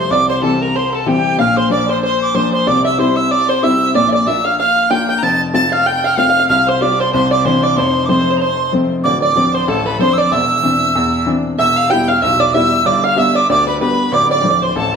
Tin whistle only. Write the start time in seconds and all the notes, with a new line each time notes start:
Already playing: C6
0.11 D6
0.29 C6
0.42 A5
0.61 A#5
0.76 C6
0.94 A5
1.07 G5
1.39 F6
1.56 C6
1.72 D6
1.90 C6
2.03 C6
2.21 D6
2.35 C6
2.53 C6
2.67 D6
2.85 E6
2.99 C6
3.16 E6
3.31 D6
3.48 C6
3.63 E6
3.95 D6
4.13 D6
4.27 E6
4.45 F6
4.59 F6
4.90 G6
5.08 G6
5.23 A6
5.54 A6
5.72 F6
5.86 G6
6.04 F6
6.17 F6
6.48 F6
6.68 C6
6.81 D6
6.99 C6
7.13 C6
7.31 D6
7.45 C6
7.63 D6
7.76 C6
8.05 C6 D6
8.37 A#5 C6
9.03 D6
9.21 D6
9.54 C6
9.69 A5
9.86 B5
10.00 C6
10.13 E6
10.18 D6
10.32 E6
11.59 E6
11.90 G6
12.08 F6
12.22 E6
12.40 D6
12.53 E6
12.86 D6
13.03 F6
13.18 E6
13.35 D6
13.50 D6
13.67 B5
13.80 B5
14.13 D6
14.31 D6
14.63 C6
14.77 A5